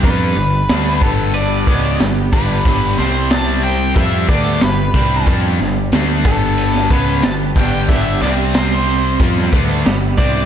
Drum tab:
HH |o-o-o-o-o-o-o-o-|o-o-o-o-o-o-o-o-|o-o-o-o-o-o-o-o-|o-o-o-o-o-o-o-o-|
SD |----o-------o---|--o-o-------o---|--o-o----o--o---|--o-o----o--o---|
BD |o-----o---o---o-|o-------o-o---o-|o-----o---o---o-|o-------o-o---o-|